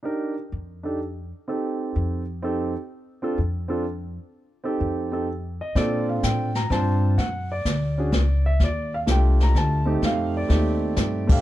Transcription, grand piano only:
0.03 0.33 D4 soft
0.03 0.33 D#4 medium
0.03 0.34 G4 soft
0.03 0.34 A#4 medium
0.83 0.98 D4 soft
0.83 0.98 D#4 soft
0.83 0.99 G4 soft
0.83 0.99 A4 soft
1.48 2.21 C4 medium
1.48 2.21 D#4 soft
1.48 2.22 G4 soft
1.48 2.22 A4 medium
2.42 2.72 C4 medium
2.42 2.72 D#4 medium
2.42 2.73 G4 medium
2.42 2.73 A4 medium
3.22 3.36 C4 medium
3.22 3.36 D4 medium
3.22 3.37 F4 medium
3.22 3.37 A4 medium
3.68 3.83 C4 medium
3.68 3.83 D4 medium
3.68 3.84 F4 medium
3.68 3.84 A4 medium
4.64 5.09 C4 medium
4.64 5.09 D#4 medium
4.64 5.10 G4 medium
4.64 5.10 A4 medium
5.12 5.26 C4 medium
5.12 5.26 D#4 soft
5.12 5.27 G4 soft
5.12 5.27 A4 medium
5.61 5.77 D#5 medium
5.76 6.49 C4 medium
5.76 6.49 D4 medium
5.76 6.49 F4 medium
5.76 6.50 A4 medium
5.76 6.06 D5 medium
6.09 6.23 F5 medium
6.24 6.57 G5 medium
6.56 6.70 A#5 medium
6.70 7.18 C4 medium
6.70 7.18 D4 medium
6.70 7.19 F4 medium
6.70 7.19 C5 medium
6.70 7.20 A5 medium
7.18 7.51 F#5 medium
7.52 8.49 D5 medium
7.98 8.12 C#4 medium
7.98 8.12 D4 soft
7.98 8.12 F#4 soft
7.98 8.12 G#4 medium
8.46 8.60 E5 medium
8.64 8.92 D5 medium
8.94 8.99 F5 medium
9.06 9.80 A3 medium
9.06 9.81 D4 medium
9.06 9.81 F4 soft
9.06 9.81 G4 medium
9.11 9.18 G5 medium
9.43 9.56 A#5 medium
9.58 10.05 A5 medium
9.85 10.46 A3 medium
9.85 10.46 C4 medium
9.85 10.47 D#4 medium
9.85 10.47 G4 medium
10.05 10.34 F5 medium
10.37 11.34 D5 medium
10.49 11.23 A3 medium
10.49 11.24 C4 medium
10.49 11.23 D#4 medium
10.49 11.24 G4 medium
11.27 11.41 A3 medium
11.27 11.41 C4 medium
11.27 11.41 D4 medium
11.27 11.41 G4 medium
11.32 11.41 F5 medium

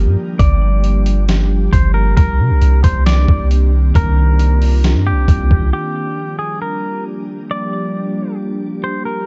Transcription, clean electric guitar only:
0.39 1.24 D5 loud
1.73 1.94 C5 medium
1.94 2.16 A#4 medium
2.17 2.80 A#4 loud
2.84 3.05 C5 medium
3.06 3.48 D5 medium
3.96 5.03 A#4 loud
5.07 5.69 G4 medium
5.73 6.36 G4 loud
6.39 6.60 G#4 medium
6.62 7.04 A#4 medium
7.51 8.36 D5 loud
8.84 9.05 C5 medium
9.05 9.26 A#4 medium

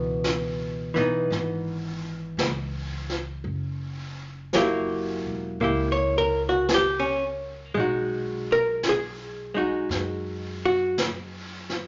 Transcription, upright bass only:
0.00 0.92 C#2 medium
0.96 1.28 B1 medium
1.30 2.34 G#1 medium
2.37 3.41 C#2 medium
3.44 5.22 F#1 medium
5.25 5.57 E1 medium
5.60 7.71 C#2 medium
7.75 9.86 B1 medium
9.89 11.87 F#2 medium

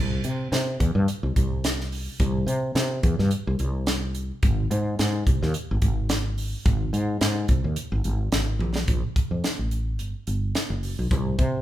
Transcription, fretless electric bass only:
0.00 0.20 C2 medium
0.25 0.48 C3 medium
0.52 0.76 C3 medium
0.80 0.93 E2 medium
0.95 1.06 G2 medium
1.23 1.34 C2 medium
1.36 2.08 C2 medium
2.20 2.44 C2 medium
2.47 2.71 C3 medium
2.75 2.99 C3 medium
3.03 3.16 E2 medium
3.19 3.30 G2 medium
3.47 3.58 C2 medium
3.60 4.31 C2 medium
4.43 4.67 G#1 medium
4.71 4.95 G#2 loud
4.99 5.23 G#2 medium
5.26 5.40 C2 medium
5.43 5.53 D#2 loud
5.71 5.81 G#1 medium
5.82 6.53 G#1 medium
6.65 6.89 G#1 medium
6.93 7.17 G#2 medium
7.21 7.45 G#2 medium
7.49 7.62 C2 medium
7.64 7.75 D#2 medium
7.92 8.03 G#1 loud
8.05 8.29 G#1 medium
8.32 8.58 G#1 medium
8.59 8.85 A#1 medium
8.88 9.01 A#1 medium
9.16 muted fretless electric bass stroke soft
9.31 9.42 F2 medium
9.59 9.99 A1 medium
9.99 10.13 G1 medium
10.27 10.51 G1 medium
10.70 10.94 F#1 medium
10.99 11.09 B1 medium
11.11 11.35 C2 medium
11.39 11.62 C3 medium

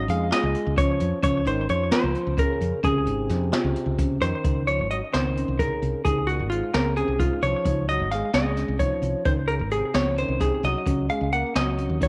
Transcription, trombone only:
0.08 0.30 G#3 medium
0.31 0.74 G#3 medium
0.77 1.20 F3 medium
1.22 1.44 F3 medium
1.45 1.67 D#3 medium
1.69 1.90 F3 medium
1.92 2.35 F3 medium
2.38 2.80 C#3 medium
2.83 4.17 C3 medium
4.21 4.63 D#3 medium
4.67 4.88 F3 medium
4.91 5.01 F#3 medium
5.12 5.55 D#3 medium
5.59 6.02 C#3 medium
6.04 6.26 C3 medium
6.28 6.49 A#2 medium
6.50 6.72 G#2 medium
6.73 6.95 C#3 medium
6.97 7.18 C3 medium
7.19 7.41 G#2 medium
7.43 7.85 F3 medium
7.89 8.10 F#3 medium
8.11 8.33 G#3 medium
8.34 8.77 G#3 medium
8.79 9.22 F3 medium
9.26 9.36 D#3 medium
9.49 9.59 C#3 medium
9.72 9.93 C3 medium
9.95 10.16 F3 medium
10.19 10.40 D#3 medium
10.41 10.62 C3 medium
10.64 11.06 F#3 medium
11.09 11.31 G#3 medium
11.31 11.53 A#3 medium
11.56 11.98 F#3 medium
12.01 12.08 F#3 medium

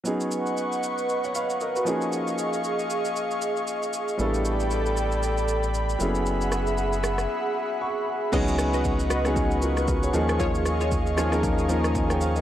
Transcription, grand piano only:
0.04 1.82 F#3 medium
0.04 1.82 B3 medium
0.04 1.83 C#4 medium
0.04 1.83 D#4 medium
0.04 1.08 G#4 medium
1.24 1.35 C#5 medium
1.24 1.34 F#5 medium
1.35 1.60 B4 medium
1.35 1.59 F5 medium
1.61 1.75 A#4 medium
1.61 1.75 D#5 medium
1.76 2.01 F#4 medium
1.76 2.00 B4 medium
1.85 3.89 F3 medium
1.85 3.89 A#3 medium
1.85 3.89 C#4 medium
1.85 3.90 D#4 medium
1.85 3.90 G#4 medium
4.17 5.96 G3 medium
4.17 5.96 B3 medium
4.17 5.97 D4 medium
4.17 5.97 E4 medium
4.17 5.98 A4 medium
5.99 8.02 F#3 medium
5.99 6.07 A#3 medium
5.99 8.03 C#4 medium
5.99 8.04 E4 medium
5.99 8.04 G#4 medium
6.06 8.06 B3 medium
7.81 8.29 C#6 medium
8.32 9.06 F#3 loud
8.32 9.06 B3 medium
8.32 9.06 C#4 medium
8.32 9.06 D#4 medium
8.32 9.07 G#4 loud
9.24 9.55 F#3 medium
9.24 9.55 B3 medium
9.24 9.56 C#4 medium
9.24 9.56 D#4 medium
9.24 9.37 G#4 medium
9.62 9.87 F4 medium
9.62 9.87 A#4 medium
9.88 10.03 F#4 medium
9.88 10.02 B4 medium
10.03 10.13 G#4 medium
10.03 10.28 C#5 medium
10.13 10.97 F3 medium
10.13 10.97 A#3 medium
10.13 10.98 C#4 medium
10.13 10.98 D#4 medium
10.13 10.98 G#4 loud
11.17 11.29 F3 medium
11.17 11.29 A#3 medium
11.17 11.29 C#4 medium
11.17 11.30 D#4 medium
11.17 11.30 G#4 medium
11.32 11.62 F3 medium
11.32 11.62 A#3 medium
11.32 11.63 C#4 medium
11.32 11.63 D#4 medium
11.32 11.63 A#4 medium
11.68 12.32 F3 medium
11.68 12.33 A#3 medium
11.68 12.33 C#4 medium
11.68 12.33 D#4 medium
11.68 11.95 A#4 medium
11.95 12.10 D#5 medium
11.95 12.09 G#5 medium
12.10 12.21 C#5 medium
12.10 12.20 G5 medium
12.21 12.35 C5 medium
12.21 12.35 F5 medium
12.36 12.41 A#4 medium
12.36 12.41 D#5 medium

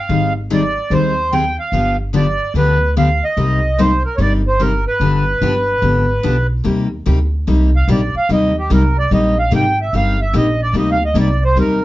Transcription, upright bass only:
0.09 0.75 G#1 medium
0.90 1.56 D#2 medium
1.72 2.38 G1 medium
2.54 3.20 D2 medium
3.37 4.02 C2 medium
4.18 4.84 G1 medium
5.00 5.33 G1 medium
5.41 5.76 G1 medium
5.82 6.17 G#1 medium
6.24 6.59 B1 medium
6.65 7.05 D#2 medium
7.07 7.46 D2 medium
7.48 7.87 C2 medium
7.88 8.12 A#1 medium
8.14 muted upright bass stroke soft
8.29 8.69 D#2 medium
8.70 9.10 C2 medium
9.11 9.51 A#1 medium
9.52 9.92 G#1 medium
9.93 10.33 G1 medium
10.33 10.73 A#1 medium
10.73 11.14 D2 medium
11.14 11.55 C2 medium
11.56 11.85 D#2 medium

